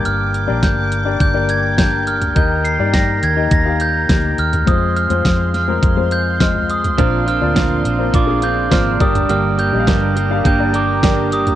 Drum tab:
HH |x-x-x-x-x-x-x-xx|x-x-x-x-x-x-x-xx|x-xxx-x-x-x-x-xx|x-x-x-x-x-x-x-xx|
SD |----o-------o---|----o-------o---|----o-o-----o---|----o-------o---|
FT |---------------o|---------------o|-------------o-o|---------------o|
BD |----o---o---o---|o---o---o---o---|o---o---o---o---|o---o---o---o-o-|

HH |x-x-x-x-x-x-x-xx|
SD |----o-------o---|
FT |---------------o|
BD |----o---o---o---|